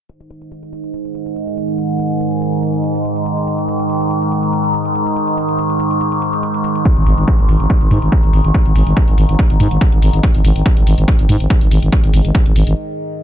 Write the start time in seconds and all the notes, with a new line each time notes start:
0.09 G#2 D#3, closed hi-hat
0.20 closed hi-hat
0.30 closed hi-hat
0.42 closed hi-hat
0.52 closed hi-hat
0.63 closed hi-hat
0.73 closed hi-hat
0.84 closed hi-hat
0.94 closed hi-hat
1.05 closed hi-hat
1.15 closed hi-hat
1.26 closed hi-hat
1.36 closed hi-hat
1.47 closed hi-hat
1.57 closed hi-hat
1.68 closed hi-hat
1.78 closed hi-hat
1.90 closed hi-hat
2.00 closed hi-hat
2.11 closed hi-hat
2.21 closed hi-hat
2.32 closed hi-hat
2.42 closed hi-hat
2.53 closed hi-hat
2.63 closed hi-hat
2.74 closed hi-hat
2.84 closed hi-hat
2.95 closed hi-hat
3.05 closed hi-hat
3.16 closed hi-hat
3.26 closed hi-hat
3.37 closed hi-hat
3.47 closed hi-hat
3.58 closed hi-hat
3.68 closed hi-hat
3.80 closed hi-hat
3.90 closed hi-hat
4.01 closed hi-hat
4.11 closed hi-hat
4.22 closed hi-hat
4.32 closed hi-hat
4.43 closed hi-hat
4.53 closed hi-hat
4.64 closed hi-hat
4.74 closed hi-hat
4.85 closed hi-hat
4.95 closed hi-hat
5.06 closed hi-hat
5.16 closed hi-hat
5.27 closed hi-hat
5.37 closed hi-hat
5.49 closed hi-hat
5.59 closed hi-hat
5.70 closed hi-hat
5.80 closed hi-hat
5.91 closed hi-hat
6.01 closed hi-hat
6.12 closed hi-hat
6.22 closed hi-hat
6.33 closed hi-hat
6.43 closed hi-hat
6.54 closed hi-hat
6.64 closed hi-hat
6.75 closed hi-hat
6.85 kick, closed hi-hat
6.96 G#1, closed hi-hat
7.06 G#1, open hi-hat
7.18 G#1, closed hi-hat
7.28 kick, closed hi-hat
7.39 G#1, closed hi-hat
7.49 G#1, open hi-hat
7.60 G#1, closed hi-hat
7.70 kick, closed hi-hat
7.81 G#1, closed hi-hat
7.91 G#2, open hi-hat
8.02 G#1, closed hi-hat
8.12 kick, closed hi-hat
8.23 G#1, closed hi-hat
8.33 G#1, open hi-hat
8.44 G#1, closed hi-hat
8.54 kick, closed hi-hat
8.65 G#1, closed hi-hat
8.75 G#1, open hi-hat
8.87 G#1, closed hi-hat
8.97 kick, closed hi-hat
9.08 G#1, closed hi-hat
9.18 G#1, open hi-hat
9.29 G#1, closed hi-hat
9.39 kick, closed hi-hat
9.50 G#1, closed hi-hat
9.60 G#2, open hi-hat
9.71 G#1, closed hi-hat
9.81 kick, closed hi-hat
9.92 G#1, closed hi-hat
10.02 G#1, open hi-hat
10.13 G#1, closed hi-hat
10.23 kick, closed hi-hat
10.35 G#1, closed hi-hat
10.45 G#1, open hi-hat
10.56 G#1, closed hi-hat
10.66 kick, closed hi-hat
10.77 G#1, closed hi-hat
10.87 G#1, open hi-hat
10.98 G#1, closed hi-hat
11.08 kick, closed hi-hat
11.19 G#1, closed hi-hat
11.29 G#2, open hi-hat
11.40 G#1, closed hi-hat
11.50 kick, closed hi-hat
11.61 G#1, closed hi-hat
11.71 G#1, open hi-hat
11.82 G#1, closed hi-hat
11.92 kick, closed hi-hat
12.04 G#1, closed hi-hat
12.14 G#1, open hi-hat
12.25 G#1, closed hi-hat
12.35 kick, closed hi-hat
12.46 G#1, closed hi-hat
12.56 G#1, open hi-hat
12.67 G#1, closed hi-hat